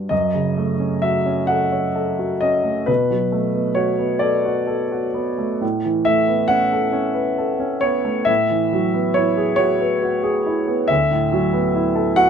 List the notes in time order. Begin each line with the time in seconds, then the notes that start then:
0.09 F#2 D#5
0.34 C#3
0.57 A3
0.80 C#4
1.02 F#4 E5
1.26 C#4
1.47 A4 F#5
1.72 C#5
1.96 A4
2.19 F#4
2.41 C#4 D#5
2.64 A3
2.86 B2 B4
3.11 F#3
3.32 A3
3.55 B3
3.75 F#4 C#5
3.99 B3
4.19 A4 D5
4.45 F#4
4.67 A4
4.92 F#4
5.14 B3
5.38 A3
5.61 A2
5.85 E3
6.05 A3 E5
6.28 B3
6.48 C#4 F#5
6.73 A4
6.93 C#4
7.14 B4
7.38 A4
7.60 C#4
7.81 B3 C#5
8.05 A3
8.25 A2 E5
8.50 E3
8.73 F#3
8.94 B3
9.14 E4 C#5
9.37 G#4
9.56 F#4 C#5
9.80 B4
10.03 F#4
10.23 G#4
10.46 E4
10.68 B3
10.88 D2 E5
11.11 A2
11.32 F#3
11.53 B3
11.75 E4
11.95 A4
12.16 F#4 F#5